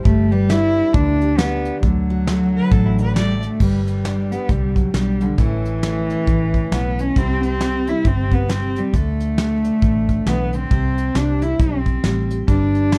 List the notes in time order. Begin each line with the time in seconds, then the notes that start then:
0.05 G1 G3 A3, kick, closed hi-hat
0.31 G3 B4
0.49 D4 E4, snare, closed hi-hat
0.93 D2 D3 D4, kick, closed hi-hat
1.21 G4, closed hi-hat
1.38 B3 D4, snare, closed hi-hat
1.65 closed hi-hat
1.82 D2 D3 F#3, kick, closed hi-hat
2.10 F#4
2.27 A3, snare, closed hi-hat
2.57 B4
2.72 A1 A2 A4, kick, closed hi-hat
2.86 E4
2.98 D4 B4, closed hi-hat
3.16 G3 A3 D5, snare, closed hi-hat
3.42 A3, closed hi-hat
3.60 G1 G3 B4, kick, crash
3.87 G3, closed hi-hat
4.05 D4, snare, closed hi-hat
4.32 B3 G4, closed hi-hat
4.49 C2 D3 G3, kick, closed hi-hat
4.76 F#3, kick, closed hi-hat
4.94 B1 F#3 G3, snare, closed hi-hat
5.21 D3 G3, closed hi-hat
5.38 A1 A2 E3 A3 C#4 E4 C#5, kick, closed hi-hat
5.65 closed hi-hat
5.83 A3, snare, closed hi-hat
6.10 C#4, closed hi-hat
6.27 A1 E3, kick, closed hi-hat
6.54 kick, closed hi-hat
6.72 B1 A2 B3, snare, closed hi-hat
6.99 B2 C#4, closed hi-hat
7.16 C2 C3 G3 C4 E4 G4 C5, kick, closed hi-hat
7.43 C4, closed hi-hat
7.60 G3, snare, closed hi-hat
7.87 G3 E4, closed hi-hat
8.05 G1 C3 C4, kick, closed hi-hat
8.32 B3, kick, closed hi-hat
8.49 G3 C4, snare, closed hi-hat
8.76 G3 G4, closed hi-hat
8.94 D2 D3 A3 A4, kick, closed hi-hat
9.20 closed hi-hat
9.38 A3, snare, closed hi-hat
9.64 D4, closed hi-hat
9.82 A1 A2, kick, closed hi-hat
10.09 kick, closed hi-hat
10.26 B1 E3 B3, snare, closed hi-hat
10.53 D3 C4, closed hi-hat
10.71 C2 C3 C5, kick, closed hi-hat
10.98 closed hi-hat
11.15 C2 G3 D4, snare, closed hi-hat
11.42 G3 E4, closed hi-hat
11.59 B1 C4, kick, closed hi-hat
11.86 kick, closed hi-hat
12.04 A1 G3, snare, closed hi-hat
12.31 G4, closed hi-hat
12.48 G1 G3 D4 G4 B4, kick, closed hi-hat
12.75 closed hi-hat
12.92 D4, snare, closed hi-hat